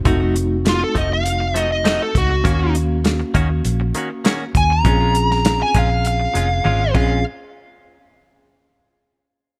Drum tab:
CC |----------------|----------------|--------------x-|----------------|
HH |x-x-x-x-x-x-x-x-|x-x-x-x-x-x-x-x-|x-x-x-x-x-x-----|----------------|
SD |----o-------o---|----o-------o---|---oo-----------|----------------|
T1 |----------------|----------------|------------o---|----------------|
BD |o-----o-------o-|o-----o-------o-|o-----o-------o-|----------------|